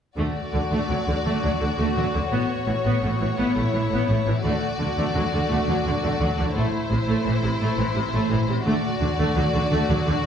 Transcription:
0.17 double bass section D2, cello section D3, viola section A3, violin section F#4 D5
0.54 double bass section D2, viola section D3, cello section D3
0.71 double bass section D2, cello section D3, viola section A3
0.89 double bass section D2, cello section D3, viola section F#3
1.07 double bass section D2, cello section D3, viola section D3
1.25 double bass section D2, cello section D3, viola section A3
1.42 double bass section D2, cello section D3, viola section F#3
1.60 double bass section D2, viola section D3, cello section D3
1.78 double bass section D2, cello section D3, viola section A3
1.96 double bass section D2, cello section D3, viola section F#3
2.13 double bass section D2, cello section D3, viola section D3
2.31 double bass section A1, cello section A2, viola section B3, violin section C#5
2.67 double bass section A1, cello section A2, viola section E3
2.85 double bass section A1, cello section A2, viola section B3
3.02 double bass section A1, cello section A2, viola section A3
3.20 double bass section A1, cello section A2, viola section E3
3.37 double bass section A1, cello section A2, viola section B3, violin section E4
3.56 double bass section A1, cello section A2, viola section A3
3.73 double bass section A1, cello section A2, viola section E3
3.90 double bass section A1, cello section A2, viola section B3
4.08 double bass section A1, cello section A2, viola section A3
4.26 double bass section A1, cello section A2, viola section E3
4.43 double bass section D2, cello section D3, viola section A3, violin section F#4 D5
4.79 double bass section D2, cello section D3, viola section D3
4.97 double bass section D2, cello section D3, viola section A3
5.14 double bass section D2, cello section D3, viola section F#3
5.33 double bass section D2, cello section D3, viola section D3
5.50 double bass section D2, cello section D3, viola section A3
5.67 double bass section D2, cello section D3, viola section F#3
5.86 double bass section D2, cello section D3, viola section D3
6.02 double bass section D2, cello section D3, viola section A3
6.20 double bass section D2, cello section D3, viola section F#3
6.38 double bass section D2, cello section D3, viola section D3
6.55 double bass section A1, cello section A2, viola section A3, violin section E4 C5
6.90 double bass section A1, cello section A2, viola section C3
7.07 double bass section A1, cello section A2, viola section A3
7.25 double bass section A1, cello section A2, viola section E3
7.43 double bass section A1, cello section A2, viola section C3
7.61 double bass section A1, cello section A2, viola section A3
7.78 double bass section A1, cello section A2, viola section E3
7.96 double bass section A1, cello section A2, viola section C3
8.14 double bass section A1, cello section A2, viola section A3
8.31 double bass section A1, cello section A2, viola section E3
8.48 double bass section A1, cello section A2, viola section C3
8.65 double bass section D2, cello section D3, viola section A3, violin section F#4 D5
9.00 double bass section D2, cello section D3, viola section D3
9.18 double bass section D2, cello section D3, viola section A3
9.36 double bass section D2, cello section D3, viola section F#3
9.53 double bass section D2, cello section D3, viola section D3
9.71 double bass section D2, cello section D3, viola section A3
9.89 double bass section D2, cello section D3, viola section F#3
10.06 double bass section D2, cello section D3, viola section D3

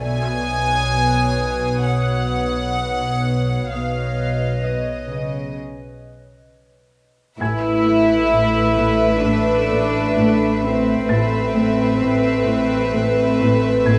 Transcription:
Already playing: grand piano E5 G#6
0.01 double bass section B1, cello section B2, ambient pad B4 C#5 D#6, violin section G#5
1.86 violin section F#5
3.70 double bass section B1, cello section B2, ambient pad B4 C#5 D#5, violin section F5
4.63 cello section B2, violin section D#5
5.10 cello section C#3
7.40 double bass section A1, cello section A2 E4, viola section A3, ambient pad A4 B4 E5, violin section B4 E5, grand piano G#5 G#6
7.86 cello section A3
8.33 cello section A2
8.79 cello section A2
9.25 cello section A2 D4
9.72 cello section A2
10.18 cello section A2
10.63 cello section A2 C4
11.09 double bass section A1, cello section A2, viola section A3, ambient pad A4 B4 E5, violin section B4 E5, grand piano A6
11.55 cello section A3
12.01 cello section A2
12.47 cello section A2
12.95 cello section A2
13.41 cello section A2
13.86 cello section A2, grand piano G#6

